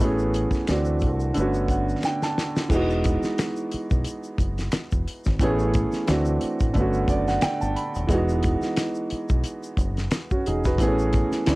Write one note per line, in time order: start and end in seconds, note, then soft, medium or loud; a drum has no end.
0.00 0.45 A1 loud
0.00 0.66 E3 medium
0.00 0.67 A3 medium
0.00 0.69 B3 medium
0.00 0.69 C#4 medium
0.00 0.19 F#4 medium
0.00 0.70 G#4 medium
0.00 0.18 B4 medium
0.00 kick loud
0.00 closed hi-hat medium
0.00 shaker medium
0.19 shaker soft
0.34 closed hi-hat medium
0.34 shaker soft
0.51 muted fingered electric bass stroke soft
0.51 kick medium
0.51 snare soft
0.51 shaker soft
0.67 1.04 D2 loud
0.67 1.35 E3 medium
0.67 1.35 A3 medium
0.67 1.36 C4 medium
0.67 1.37 D4 medium
0.67 1.37 F#4 medium
0.67 finger snap medium
0.67 snare medium
0.67 closed hi-hat medium
0.67 shaker medium
0.85 shaker soft
1.00 1.31 C2 medium
1.00 kick medium
1.00 closed hi-hat medium
1.00 shaker soft
1.20 shaker soft
1.34 1.94 G1 medium
1.34 2.67 D3 medium
1.34 2.68 A3 medium
1.34 2.69 B3 medium
1.34 closed hi-hat medium
1.34 shaker medium
1.39 2.69 C#4 medium
1.39 2.70 F#4 medium
1.54 shaker soft
1.68 2.01 F#5 medium
1.68 kick medium
1.68 closed hi-hat medium
1.68 shaker soft
1.89 shaker soft
2.03 2.21 G5 medium
2.03 finger snap medium
2.03 snare medium
2.03 shaker medium
2.22 2.68 A5 medium
2.22 snare soft
2.22 shaker soft
2.38 snare medium
2.38 shaker soft
2.56 snare medium
2.56 shaker soft
2.69 3.15 E1 loud
2.69 5.35 E3 medium
2.69 5.36 G#3 medium
2.69 5.37 B3 medium
2.69 kick loud
2.69 crash medium
2.69 shaker medium
2.74 5.38 D#4 medium
2.74 5.39 F#4 medium
2.90 shaker soft
3.04 kick loud
3.04 closed hi-hat medium
3.04 shaker soft
3.23 snare soft
3.23 shaker soft
3.38 finger snap medium
3.38 snare loud
3.38 closed hi-hat medium
3.38 shaker medium
3.56 shaker soft
3.71 muted fingered electric bass stroke soft
3.71 closed hi-hat medium
3.90 4.04 B1 medium
3.90 kick loud
3.90 shaker soft
4.04 closed hi-hat medium
4.04 shaker medium
4.24 shaker soft
4.38 4.68 F#1 medium
4.38 kick medium
4.38 closed hi-hat medium
4.38 shaker soft
4.58 snare soft
4.58 closed hi-hat soft
4.58 shaker soft
4.72 finger snap medium
4.72 muted fingered electric bass stroke soft
4.72 snare loud
4.72 closed hi-hat medium
4.72 shaker medium
4.91 5.05 E1 medium
4.91 kick loud
4.91 shaker soft
5.08 closed hi-hat medium
5.24 5.39 G#1 loud
5.24 kick medium
5.24 snare soft
5.24 closed hi-hat soft
5.24 shaker medium
5.40 5.85 A1 loud
5.40 6.05 E3 medium
5.40 6.06 A3 medium
5.40 6.08 B3 medium
5.40 6.09 C#4 medium
5.40 6.09 G#4 loud
5.40 kick loud
5.40 closed hi-hat medium
5.40 shaker medium
5.59 shaker soft
5.74 kick loud
5.74 closed hi-hat medium
5.74 shaker soft
5.92 snare soft
5.92 closed hi-hat soft
5.92 shaker soft
6.07 6.37 D2 loud
6.07 6.75 E3 medium
6.07 6.74 A3 medium
6.07 6.76 C4 medium
6.07 6.76 D4 medium
6.07 6.76 F#4 medium
6.07 finger snap medium
6.07 snare loud
6.07 closed hi-hat medium
6.07 shaker medium
6.25 shaker medium
6.41 closed hi-hat medium
6.60 6.73 A1 medium
6.60 kick loud
6.60 closed hi-hat soft
6.60 shaker soft
6.74 7.04 G1 medium
6.74 8.06 D3 medium
6.74 8.07 A3 medium
6.74 8.08 B3 medium
6.74 kick medium
6.74 closed hi-hat medium
6.74 shaker medium
6.79 8.09 C#4 medium
6.79 8.10 F#4 medium
6.93 shaker soft
7.08 7.37 F#1 medium
7.08 7.27 D5 medium
7.08 kick medium
7.08 closed hi-hat medium
7.08 shaker soft
7.28 7.42 F#5 medium
7.28 snare soft
7.28 closed hi-hat soft
7.28 shaker soft
7.41 7.60 G5 medium
7.41 finger snap medium
7.41 muted fingered electric bass stroke soft
7.41 snare loud
7.41 closed hi-hat medium
7.41 shaker medium
7.61 7.74 G1 medium
7.61 7.75 A5 medium
7.61 shaker medium
7.76 8.07 B5 medium
7.76 closed hi-hat medium
7.95 8.08 D#1 medium
7.95 closed hi-hat soft
7.95 shaker soft
8.07 8.54 E1 loud
8.07 10.07 E3 medium
8.07 10.07 G#3 medium
8.07 10.08 B3 medium
8.07 kick loud
8.07 closed hi-hat medium
8.07 shaker medium
8.12 9.76 D#4 medium
8.12 9.77 F#4 medium
8.29 shaker soft
8.43 kick loud
8.43 closed hi-hat medium
8.43 shaker soft
8.62 snare soft
8.62 shaker soft
8.77 finger snap medium
8.77 snare medium
8.77 closed hi-hat medium
8.77 shaker medium
8.95 shaker soft
9.10 muted fingered electric bass stroke medium
9.10 closed hi-hat medium
9.29 9.43 B1 medium
9.29 kick loud
9.29 shaker soft
9.44 closed hi-hat medium
9.44 shaker medium
9.63 shaker soft
9.77 10.07 F#1 loud
9.77 kick medium
9.77 closed hi-hat medium
9.77 shaker soft
9.97 snare soft
9.97 closed hi-hat soft
9.97 shaker soft
10.11 finger snap medium
10.11 snare loud
10.11 closed hi-hat medium
10.11 shaker medium
10.31 10.46 C#4 medium
10.31 10.45 F#4 medium
10.31 muted fingered electric bass stroke soft
10.31 kick medium
10.31 shaker soft
10.46 10.79 E1 medium
10.46 10.64 D#4 medium
10.46 10.64 G#4 medium
10.46 closed hi-hat medium
10.64 10.97 F#4 medium
10.64 10.97 B4 medium
10.64 kick loud
10.64 snare soft
10.64 closed hi-hat soft
10.64 shaker soft
10.78 11.24 A1 loud
10.78 11.45 E3 medium
10.78 11.46 A3 medium
10.78 11.47 B3 medium
10.78 10.87 C4 medium
10.78 11.48 G#4 medium
10.78 kick loud
10.78 closed hi-hat loud
10.78 shaker medium
10.88 11.51 C#4 medium
10.99 shaker soft
11.13 kick medium
11.13 closed hi-hat medium
11.13 shaker soft
11.32 snare soft
11.32 closed hi-hat soft
11.32 shaker soft
11.46 11.55 D2 loud
11.46 11.55 E3 medium
11.46 11.55 A3 medium
11.46 11.55 C4 medium
11.46 11.55 D4 medium
11.46 11.55 E4 medium
11.46 finger snap medium
11.46 snare loud
11.46 closed hi-hat loud
11.46 shaker medium